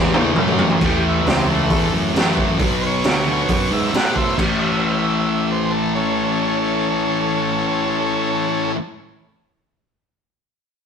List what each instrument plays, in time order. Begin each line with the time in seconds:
Already playing: fingered electric bass E2, distorted electric guitar A2 E3 A3
0.14 distorted electric guitar E3 A3, high tom
0.18 distorted electric guitar A2
0.36 fingered electric bass F#2, distorted electric guitar A2 E3 A3, mid tom
0.48 mid tom
0.59 floor tom
0.70 floor tom
0.80 fingered electric bass A1, distorted electric guitar A2 E3 A3, kick, crash
0.85 transistor combo organ G4
1.08 transistor combo organ E4
1.25 fingered electric bass C#2, transistor combo organ B3, snare, open hi-hat
1.29 transistor combo organ C4
1.45 distorted electric guitar E3 A3
1.49 distorted electric guitar A2, transistor combo organ A3
1.70 fingered electric bass E2, kick, open hi-hat
1.92 fingered electric bass F#2
2.13 fingered electric bass F#2, distorted electric guitar A2 E3 A3, open hi-hat
2.17 snare
2.37 kick
2.58 fingered electric bass B1, distorted electric guitar B2 F#3, kick, open hi-hat
2.62 distorted electric guitar B3
2.81 transistor combo organ C5
2.86 transistor combo organ C#5
3.04 fingered electric bass D2, snare, open hi-hat
3.25 distorted electric guitar B2 F#3 B3
3.48 fingered electric bass F#2, kick, open hi-hat
3.71 fingered electric bass G#2, transistor combo organ E5
3.91 fingered electric bass A2, distorted electric guitar B2 F#3 B3, snare, open hi-hat
3.96 transistor combo organ F#5
4.16 transistor combo organ C5 E5, kick
4.38 fingered electric bass A1, distorted electric guitar A2 E3 A3, kick, crash
4.59 transistor combo organ D#5
4.64 transistor combo organ E5
5.51 transistor combo organ C5
5.71 transistor combo organ A4
5.95 transistor combo organ C#4 A4